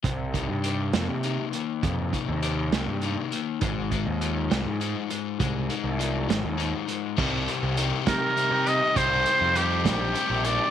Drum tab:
CC |------|------|------|------|
HH |xxxxxx|xxxxxx|xxxxxx|xxxxxx|
SD |---o--|---o--|---o--|---o--|
BD |oo----|oo----|oo----|o-----|

CC |x-----|------|
HH |-xxxxx|xxxxxx|
SD |---o--|---o--|
BD |o--o--|o--o--|